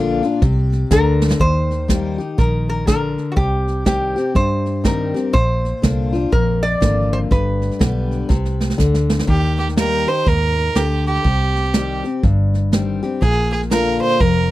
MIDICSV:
0, 0, Header, 1, 6, 480
1, 0, Start_track
1, 0, Tempo, 492207
1, 1369, Time_signature, 4, 2, 24, 8
1, 14150, End_track
2, 0, Start_track
2, 0, Title_t, "Resonator guitar played with a steel bar"
2, 0, Program_c, 0, 25
2, 0, Note_on_c, 0, 74, 84
2, 856, Note_off_c, 0, 74, 0
2, 895, Note_on_c, 0, 70, 87
2, 1338, Note_off_c, 0, 70, 0
2, 1371, Note_on_c, 0, 72, 102
2, 2106, Note_off_c, 0, 72, 0
2, 2328, Note_on_c, 0, 70, 72
2, 2617, Note_off_c, 0, 70, 0
2, 2629, Note_on_c, 0, 70, 71
2, 2792, Note_off_c, 0, 70, 0
2, 2804, Note_on_c, 0, 70, 78
2, 3234, Note_on_c, 0, 66, 51
2, 3246, Note_off_c, 0, 70, 0
2, 3279, Note_off_c, 0, 66, 0
2, 3283, Note_on_c, 0, 67, 87
2, 3756, Note_off_c, 0, 67, 0
2, 3768, Note_on_c, 0, 67, 75
2, 4214, Note_off_c, 0, 67, 0
2, 4252, Note_on_c, 0, 72, 87
2, 4734, Note_on_c, 0, 70, 80
2, 4744, Note_off_c, 0, 72, 0
2, 5178, Note_off_c, 0, 70, 0
2, 5202, Note_on_c, 0, 72, 97
2, 6168, Note_on_c, 0, 70, 86
2, 6195, Note_off_c, 0, 72, 0
2, 6463, Note_on_c, 0, 74, 107
2, 6474, Note_off_c, 0, 70, 0
2, 6911, Note_off_c, 0, 74, 0
2, 6953, Note_on_c, 0, 72, 83
2, 7002, Note_off_c, 0, 72, 0
2, 7137, Note_on_c, 0, 71, 77
2, 8536, Note_off_c, 0, 71, 0
2, 14150, End_track
3, 0, Start_track
3, 0, Title_t, "Fiddle"
3, 0, Program_c, 1, 110
3, 9056, Note_on_c, 1, 67, 74
3, 9329, Note_off_c, 1, 67, 0
3, 9354, Note_on_c, 1, 67, 65
3, 9436, Note_off_c, 1, 67, 0
3, 9535, Note_on_c, 1, 70, 88
3, 9830, Note_on_c, 1, 72, 82
3, 9845, Note_off_c, 1, 70, 0
3, 10021, Note_on_c, 1, 70, 85
3, 10035, Note_off_c, 1, 72, 0
3, 10496, Note_on_c, 1, 67, 75
3, 10510, Note_off_c, 1, 70, 0
3, 10791, Note_off_c, 1, 67, 0
3, 10797, Note_on_c, 1, 67, 75
3, 11715, Note_off_c, 1, 67, 0
3, 12889, Note_on_c, 1, 68, 83
3, 13168, Note_off_c, 1, 68, 0
3, 13187, Note_on_c, 1, 68, 71
3, 13271, Note_off_c, 1, 68, 0
3, 13367, Note_on_c, 1, 70, 86
3, 13646, Note_off_c, 1, 70, 0
3, 13670, Note_on_c, 1, 72, 94
3, 13851, Note_on_c, 1, 70, 88
3, 13866, Note_off_c, 1, 72, 0
3, 14150, Note_off_c, 1, 70, 0
3, 14150, End_track
4, 0, Start_track
4, 0, Title_t, "Steel-string acoustic guitar"
4, 0, Program_c, 2, 25
4, 0, Note_on_c, 2, 46, 78
4, 0, Note_on_c, 2, 50, 79
4, 0, Note_on_c, 2, 58, 88
4, 0, Note_on_c, 2, 62, 103
4, 0, Note_on_c, 2, 65, 98
4, 210, Note_off_c, 2, 65, 0
4, 213, Note_off_c, 2, 50, 0
4, 218, Note_off_c, 2, 58, 0
4, 219, Note_off_c, 2, 62, 0
4, 222, Note_on_c, 2, 65, 56
4, 240, Note_on_c, 2, 62, 54
4, 374, Note_off_c, 2, 46, 0
4, 401, Note_off_c, 2, 65, 0
4, 410, Note_off_c, 2, 62, 0
4, 412, Note_on_c, 2, 48, 88
4, 872, Note_off_c, 2, 48, 0
4, 885, Note_on_c, 2, 50, 94
4, 1348, Note_off_c, 2, 50, 0
4, 1360, Note_on_c, 2, 51, 65
4, 1836, Note_on_c, 2, 55, 58
4, 1844, Note_on_c, 2, 58, 58
4, 1851, Note_on_c, 2, 63, 55
4, 1858, Note_on_c, 2, 67, 56
4, 2116, Note_off_c, 2, 67, 0
4, 2126, Note_off_c, 2, 55, 0
4, 2127, Note_on_c, 2, 67, 48
4, 2130, Note_off_c, 2, 58, 0
4, 2134, Note_off_c, 2, 63, 0
4, 2152, Note_on_c, 2, 63, 36
4, 2286, Note_off_c, 2, 51, 0
4, 2312, Note_off_c, 2, 67, 0
4, 2321, Note_on_c, 2, 51, 69
4, 2324, Note_off_c, 2, 63, 0
4, 2786, Note_off_c, 2, 51, 0
4, 2800, Note_on_c, 2, 50, 75
4, 3266, Note_off_c, 2, 50, 0
4, 3279, Note_on_c, 2, 48, 68
4, 3755, Note_on_c, 2, 51, 50
4, 3764, Note_on_c, 2, 55, 48
4, 3771, Note_on_c, 2, 60, 56
4, 3777, Note_on_c, 2, 67, 59
4, 4044, Note_off_c, 2, 67, 0
4, 4046, Note_off_c, 2, 51, 0
4, 4050, Note_off_c, 2, 55, 0
4, 4054, Note_off_c, 2, 60, 0
4, 4056, Note_on_c, 2, 67, 46
4, 4076, Note_on_c, 2, 60, 38
4, 4207, Note_off_c, 2, 48, 0
4, 4236, Note_off_c, 2, 67, 0
4, 4246, Note_on_c, 2, 43, 74
4, 4247, Note_off_c, 2, 60, 0
4, 4718, Note_on_c, 2, 51, 50
4, 4724, Note_on_c, 2, 55, 48
4, 4732, Note_on_c, 2, 60, 59
4, 4740, Note_on_c, 2, 67, 57
4, 5004, Note_off_c, 2, 67, 0
4, 5007, Note_off_c, 2, 51, 0
4, 5010, Note_off_c, 2, 55, 0
4, 5015, Note_off_c, 2, 60, 0
4, 5015, Note_on_c, 2, 67, 57
4, 5035, Note_on_c, 2, 60, 38
4, 5170, Note_off_c, 2, 43, 0
4, 5196, Note_off_c, 2, 67, 0
4, 5198, Note_on_c, 2, 46, 69
4, 5206, Note_off_c, 2, 60, 0
4, 5677, Note_on_c, 2, 50, 51
4, 5685, Note_on_c, 2, 58, 53
4, 5691, Note_on_c, 2, 62, 62
4, 5698, Note_on_c, 2, 65, 63
4, 5963, Note_off_c, 2, 65, 0
4, 5967, Note_off_c, 2, 50, 0
4, 5971, Note_off_c, 2, 58, 0
4, 5975, Note_off_c, 2, 62, 0
4, 5975, Note_on_c, 2, 65, 53
4, 5998, Note_on_c, 2, 62, 47
4, 6127, Note_off_c, 2, 46, 0
4, 6156, Note_off_c, 2, 65, 0
4, 6165, Note_on_c, 2, 41, 75
4, 6168, Note_off_c, 2, 62, 0
4, 6636, Note_on_c, 2, 50, 52
4, 6646, Note_on_c, 2, 58, 58
4, 6652, Note_on_c, 2, 62, 55
4, 6658, Note_on_c, 2, 65, 57
4, 7091, Note_off_c, 2, 41, 0
4, 7104, Note_off_c, 2, 50, 0
4, 7110, Note_off_c, 2, 58, 0
4, 7113, Note_off_c, 2, 62, 0
4, 7115, Note_off_c, 2, 65, 0
4, 7126, Note_on_c, 2, 43, 68
4, 7599, Note_on_c, 2, 50, 50
4, 7607, Note_on_c, 2, 55, 56
4, 7615, Note_on_c, 2, 59, 61
4, 7621, Note_on_c, 2, 67, 56
4, 8052, Note_off_c, 2, 43, 0
4, 8067, Note_off_c, 2, 50, 0
4, 8071, Note_off_c, 2, 55, 0
4, 8075, Note_off_c, 2, 59, 0
4, 8077, Note_off_c, 2, 67, 0
4, 8083, Note_on_c, 2, 48, 77
4, 8549, Note_off_c, 2, 48, 0
4, 8562, Note_on_c, 2, 50, 73
4, 9029, Note_off_c, 2, 50, 0
4, 9043, Note_on_c, 2, 51, 67
4, 9523, Note_on_c, 2, 55, 53
4, 9532, Note_on_c, 2, 58, 58
4, 9535, Note_on_c, 2, 63, 56
4, 9542, Note_on_c, 2, 67, 55
4, 9809, Note_off_c, 2, 67, 0
4, 9812, Note_off_c, 2, 55, 0
4, 9817, Note_off_c, 2, 58, 0
4, 9818, Note_off_c, 2, 63, 0
4, 9821, Note_on_c, 2, 67, 48
4, 9843, Note_on_c, 2, 63, 37
4, 9972, Note_off_c, 2, 51, 0
4, 10001, Note_off_c, 2, 67, 0
4, 10010, Note_on_c, 2, 44, 63
4, 10012, Note_off_c, 2, 63, 0
4, 10473, Note_off_c, 2, 44, 0
4, 10486, Note_on_c, 2, 50, 80
4, 10952, Note_off_c, 2, 50, 0
4, 10965, Note_on_c, 2, 48, 73
4, 11445, Note_on_c, 2, 51, 52
4, 11453, Note_on_c, 2, 55, 46
4, 11461, Note_on_c, 2, 60, 58
4, 11467, Note_on_c, 2, 67, 57
4, 11729, Note_off_c, 2, 67, 0
4, 11734, Note_off_c, 2, 51, 0
4, 11738, Note_off_c, 2, 55, 0
4, 11741, Note_on_c, 2, 67, 49
4, 11742, Note_off_c, 2, 60, 0
4, 11763, Note_on_c, 2, 60, 41
4, 11893, Note_off_c, 2, 48, 0
4, 11922, Note_off_c, 2, 67, 0
4, 11930, Note_on_c, 2, 43, 69
4, 11933, Note_off_c, 2, 60, 0
4, 12405, Note_on_c, 2, 51, 51
4, 12414, Note_on_c, 2, 55, 57
4, 12422, Note_on_c, 2, 60, 54
4, 12427, Note_on_c, 2, 67, 50
4, 12692, Note_off_c, 2, 67, 0
4, 12694, Note_off_c, 2, 51, 0
4, 12699, Note_off_c, 2, 55, 0
4, 12703, Note_off_c, 2, 60, 0
4, 12704, Note_on_c, 2, 67, 54
4, 12727, Note_on_c, 2, 60, 49
4, 12856, Note_off_c, 2, 43, 0
4, 12884, Note_off_c, 2, 67, 0
4, 12894, Note_on_c, 2, 46, 77
4, 12896, Note_off_c, 2, 60, 0
4, 13367, Note_on_c, 2, 50, 54
4, 13372, Note_on_c, 2, 58, 53
4, 13381, Note_on_c, 2, 62, 54
4, 13386, Note_on_c, 2, 65, 61
4, 13818, Note_off_c, 2, 46, 0
4, 13833, Note_off_c, 2, 50, 0
4, 13835, Note_off_c, 2, 58, 0
4, 13840, Note_off_c, 2, 62, 0
4, 13843, Note_off_c, 2, 65, 0
4, 13851, Note_on_c, 2, 41, 83
4, 14150, Note_off_c, 2, 41, 0
4, 14150, End_track
5, 0, Start_track
5, 0, Title_t, "Picked electric bass"
5, 0, Program_c, 3, 34
5, 0, Note_on_c, 3, 34, 100
5, 196, Note_off_c, 3, 34, 0
5, 406, Note_on_c, 3, 36, 78
5, 815, Note_off_c, 3, 36, 0
5, 888, Note_on_c, 3, 38, 92
5, 1296, Note_off_c, 3, 38, 0
5, 1366, Note_on_c, 3, 39, 76
5, 2111, Note_off_c, 3, 39, 0
5, 2327, Note_on_c, 3, 34, 69
5, 3071, Note_off_c, 3, 34, 0
5, 3285, Note_on_c, 3, 36, 72
5, 4031, Note_off_c, 3, 36, 0
5, 4241, Note_on_c, 3, 43, 75
5, 4989, Note_off_c, 3, 43, 0
5, 5206, Note_on_c, 3, 34, 75
5, 5579, Note_off_c, 3, 34, 0
5, 5689, Note_on_c, 3, 36, 64
5, 6097, Note_off_c, 3, 36, 0
5, 6168, Note_on_c, 3, 34, 69
5, 6577, Note_off_c, 3, 34, 0
5, 6649, Note_on_c, 3, 32, 70
5, 7058, Note_off_c, 3, 32, 0
5, 7130, Note_on_c, 3, 31, 81
5, 7503, Note_off_c, 3, 31, 0
5, 7611, Note_on_c, 3, 35, 63
5, 8019, Note_off_c, 3, 35, 0
5, 8095, Note_on_c, 3, 36, 72
5, 8501, Note_off_c, 3, 36, 0
5, 8569, Note_on_c, 3, 38, 72
5, 8978, Note_off_c, 3, 38, 0
5, 9049, Note_on_c, 3, 39, 68
5, 9795, Note_off_c, 3, 39, 0
5, 10013, Note_on_c, 3, 39, 66
5, 10421, Note_off_c, 3, 39, 0
5, 10490, Note_on_c, 3, 38, 75
5, 10900, Note_off_c, 3, 38, 0
5, 10971, Note_on_c, 3, 36, 74
5, 11717, Note_off_c, 3, 36, 0
5, 11930, Note_on_c, 3, 31, 72
5, 12677, Note_off_c, 3, 31, 0
5, 12892, Note_on_c, 3, 34, 73
5, 13638, Note_off_c, 3, 34, 0
5, 13852, Note_on_c, 3, 29, 74
5, 14150, Note_off_c, 3, 29, 0
5, 14150, End_track
6, 0, Start_track
6, 0, Title_t, "Drums"
6, 228, Note_on_c, 9, 38, 36
6, 326, Note_off_c, 9, 38, 0
6, 409, Note_on_c, 9, 38, 38
6, 410, Note_on_c, 9, 36, 124
6, 506, Note_off_c, 9, 38, 0
6, 507, Note_off_c, 9, 36, 0
6, 703, Note_on_c, 9, 38, 38
6, 801, Note_off_c, 9, 38, 0
6, 887, Note_on_c, 9, 38, 61
6, 887, Note_on_c, 9, 44, 81
6, 888, Note_on_c, 9, 36, 85
6, 984, Note_off_c, 9, 38, 0
6, 984, Note_off_c, 9, 44, 0
6, 986, Note_off_c, 9, 36, 0
6, 1186, Note_on_c, 9, 38, 84
6, 1275, Note_off_c, 9, 38, 0
6, 1275, Note_on_c, 9, 38, 95
6, 1367, Note_on_c, 9, 36, 100
6, 1368, Note_off_c, 9, 38, 0
6, 1368, Note_on_c, 9, 38, 29
6, 1465, Note_off_c, 9, 36, 0
6, 1465, Note_off_c, 9, 38, 0
6, 1664, Note_on_c, 9, 38, 34
6, 1762, Note_off_c, 9, 38, 0
6, 1847, Note_on_c, 9, 36, 80
6, 1849, Note_on_c, 9, 38, 98
6, 1849, Note_on_c, 9, 44, 90
6, 1944, Note_off_c, 9, 36, 0
6, 1946, Note_off_c, 9, 38, 0
6, 1946, Note_off_c, 9, 44, 0
6, 2143, Note_on_c, 9, 38, 28
6, 2240, Note_off_c, 9, 38, 0
6, 2325, Note_on_c, 9, 36, 99
6, 2326, Note_on_c, 9, 38, 31
6, 2423, Note_off_c, 9, 36, 0
6, 2424, Note_off_c, 9, 38, 0
6, 2623, Note_on_c, 9, 38, 33
6, 2720, Note_off_c, 9, 38, 0
6, 2805, Note_on_c, 9, 36, 75
6, 2807, Note_on_c, 9, 38, 87
6, 2807, Note_on_c, 9, 44, 78
6, 2903, Note_off_c, 9, 36, 0
6, 2905, Note_off_c, 9, 38, 0
6, 2905, Note_off_c, 9, 44, 0
6, 3102, Note_on_c, 9, 38, 32
6, 3200, Note_off_c, 9, 38, 0
6, 3285, Note_on_c, 9, 36, 100
6, 3285, Note_on_c, 9, 38, 30
6, 3382, Note_off_c, 9, 36, 0
6, 3383, Note_off_c, 9, 38, 0
6, 3584, Note_on_c, 9, 38, 33
6, 3681, Note_off_c, 9, 38, 0
6, 3765, Note_on_c, 9, 36, 91
6, 3765, Note_on_c, 9, 38, 108
6, 3765, Note_on_c, 9, 44, 83
6, 3862, Note_off_c, 9, 36, 0
6, 3862, Note_off_c, 9, 38, 0
6, 3862, Note_off_c, 9, 44, 0
6, 4063, Note_on_c, 9, 38, 30
6, 4160, Note_off_c, 9, 38, 0
6, 4243, Note_on_c, 9, 38, 34
6, 4244, Note_on_c, 9, 36, 95
6, 4340, Note_off_c, 9, 38, 0
6, 4342, Note_off_c, 9, 36, 0
6, 4542, Note_on_c, 9, 38, 33
6, 4639, Note_off_c, 9, 38, 0
6, 4726, Note_on_c, 9, 36, 76
6, 4726, Note_on_c, 9, 38, 79
6, 4726, Note_on_c, 9, 44, 73
6, 4823, Note_off_c, 9, 38, 0
6, 4823, Note_off_c, 9, 44, 0
6, 4824, Note_off_c, 9, 36, 0
6, 5025, Note_on_c, 9, 38, 31
6, 5123, Note_off_c, 9, 38, 0
6, 5209, Note_on_c, 9, 36, 102
6, 5211, Note_on_c, 9, 38, 31
6, 5306, Note_off_c, 9, 36, 0
6, 5308, Note_off_c, 9, 38, 0
6, 5508, Note_on_c, 9, 38, 32
6, 5605, Note_off_c, 9, 38, 0
6, 5689, Note_on_c, 9, 36, 84
6, 5689, Note_on_c, 9, 38, 100
6, 5689, Note_on_c, 9, 44, 85
6, 5786, Note_off_c, 9, 36, 0
6, 5786, Note_off_c, 9, 38, 0
6, 5786, Note_off_c, 9, 44, 0
6, 5987, Note_on_c, 9, 38, 31
6, 6084, Note_off_c, 9, 38, 0
6, 6168, Note_on_c, 9, 38, 31
6, 6169, Note_on_c, 9, 36, 106
6, 6266, Note_off_c, 9, 38, 0
6, 6267, Note_off_c, 9, 36, 0
6, 6469, Note_on_c, 9, 38, 31
6, 6567, Note_off_c, 9, 38, 0
6, 6650, Note_on_c, 9, 36, 76
6, 6651, Note_on_c, 9, 38, 94
6, 6651, Note_on_c, 9, 44, 75
6, 6748, Note_off_c, 9, 36, 0
6, 6748, Note_off_c, 9, 38, 0
6, 6748, Note_off_c, 9, 44, 0
6, 6947, Note_on_c, 9, 38, 28
6, 7045, Note_off_c, 9, 38, 0
6, 7132, Note_on_c, 9, 36, 98
6, 7133, Note_on_c, 9, 38, 29
6, 7229, Note_off_c, 9, 36, 0
6, 7230, Note_off_c, 9, 38, 0
6, 7429, Note_on_c, 9, 38, 33
6, 7521, Note_off_c, 9, 38, 0
6, 7521, Note_on_c, 9, 38, 27
6, 7613, Note_on_c, 9, 36, 88
6, 7616, Note_off_c, 9, 38, 0
6, 7616, Note_on_c, 9, 38, 108
6, 7616, Note_on_c, 9, 44, 80
6, 7710, Note_off_c, 9, 36, 0
6, 7713, Note_off_c, 9, 38, 0
6, 7713, Note_off_c, 9, 44, 0
6, 7912, Note_on_c, 9, 38, 29
6, 8009, Note_off_c, 9, 38, 0
6, 8094, Note_on_c, 9, 36, 100
6, 8095, Note_on_c, 9, 38, 56
6, 8191, Note_off_c, 9, 36, 0
6, 8192, Note_off_c, 9, 38, 0
6, 8245, Note_on_c, 9, 38, 46
6, 8342, Note_off_c, 9, 38, 0
6, 8392, Note_on_c, 9, 38, 59
6, 8483, Note_off_c, 9, 38, 0
6, 8483, Note_on_c, 9, 38, 51
6, 8573, Note_on_c, 9, 36, 72
6, 8576, Note_off_c, 9, 38, 0
6, 8576, Note_on_c, 9, 38, 61
6, 8576, Note_on_c, 9, 44, 71
6, 8670, Note_off_c, 9, 36, 0
6, 8674, Note_off_c, 9, 38, 0
6, 8674, Note_off_c, 9, 44, 0
6, 8722, Note_on_c, 9, 38, 63
6, 8820, Note_off_c, 9, 38, 0
6, 8870, Note_on_c, 9, 38, 78
6, 8962, Note_off_c, 9, 38, 0
6, 8962, Note_on_c, 9, 38, 67
6, 9051, Note_on_c, 9, 36, 89
6, 9060, Note_off_c, 9, 38, 0
6, 9149, Note_off_c, 9, 36, 0
6, 9347, Note_on_c, 9, 38, 33
6, 9442, Note_off_c, 9, 38, 0
6, 9442, Note_on_c, 9, 38, 30
6, 9531, Note_off_c, 9, 38, 0
6, 9531, Note_on_c, 9, 38, 114
6, 9531, Note_on_c, 9, 44, 75
6, 9628, Note_off_c, 9, 38, 0
6, 9628, Note_off_c, 9, 44, 0
6, 9831, Note_on_c, 9, 38, 28
6, 9928, Note_off_c, 9, 38, 0
6, 10012, Note_on_c, 9, 36, 98
6, 10012, Note_on_c, 9, 38, 34
6, 10109, Note_off_c, 9, 36, 0
6, 10110, Note_off_c, 9, 38, 0
6, 10308, Note_on_c, 9, 38, 32
6, 10405, Note_off_c, 9, 38, 0
6, 10492, Note_on_c, 9, 38, 88
6, 10492, Note_on_c, 9, 44, 66
6, 10590, Note_off_c, 9, 38, 0
6, 10590, Note_off_c, 9, 44, 0
6, 10789, Note_on_c, 9, 38, 28
6, 10881, Note_off_c, 9, 38, 0
6, 10881, Note_on_c, 9, 38, 28
6, 10971, Note_off_c, 9, 38, 0
6, 10971, Note_on_c, 9, 36, 97
6, 10971, Note_on_c, 9, 38, 31
6, 11069, Note_off_c, 9, 36, 0
6, 11069, Note_off_c, 9, 38, 0
6, 11269, Note_on_c, 9, 38, 35
6, 11360, Note_off_c, 9, 38, 0
6, 11360, Note_on_c, 9, 38, 27
6, 11448, Note_off_c, 9, 38, 0
6, 11448, Note_on_c, 9, 38, 105
6, 11448, Note_on_c, 9, 44, 79
6, 11545, Note_off_c, 9, 38, 0
6, 11545, Note_off_c, 9, 44, 0
6, 11746, Note_on_c, 9, 38, 28
6, 11843, Note_off_c, 9, 38, 0
6, 11930, Note_on_c, 9, 38, 32
6, 11932, Note_on_c, 9, 36, 106
6, 12028, Note_off_c, 9, 38, 0
6, 12029, Note_off_c, 9, 36, 0
6, 12228, Note_on_c, 9, 38, 31
6, 12326, Note_off_c, 9, 38, 0
6, 12411, Note_on_c, 9, 38, 95
6, 12411, Note_on_c, 9, 44, 70
6, 12508, Note_off_c, 9, 38, 0
6, 12508, Note_off_c, 9, 44, 0
6, 12707, Note_on_c, 9, 38, 31
6, 12804, Note_off_c, 9, 38, 0
6, 12889, Note_on_c, 9, 38, 33
6, 12892, Note_on_c, 9, 36, 87
6, 12986, Note_off_c, 9, 38, 0
6, 12990, Note_off_c, 9, 36, 0
6, 13189, Note_on_c, 9, 38, 36
6, 13281, Note_off_c, 9, 38, 0
6, 13281, Note_on_c, 9, 38, 29
6, 13373, Note_off_c, 9, 38, 0
6, 13373, Note_on_c, 9, 38, 97
6, 13373, Note_on_c, 9, 44, 84
6, 13471, Note_off_c, 9, 38, 0
6, 13471, Note_off_c, 9, 44, 0
6, 13670, Note_on_c, 9, 38, 30
6, 13767, Note_off_c, 9, 38, 0
6, 13851, Note_on_c, 9, 38, 29
6, 13853, Note_on_c, 9, 36, 108
6, 13949, Note_off_c, 9, 38, 0
6, 13951, Note_off_c, 9, 36, 0
6, 14150, End_track
0, 0, End_of_file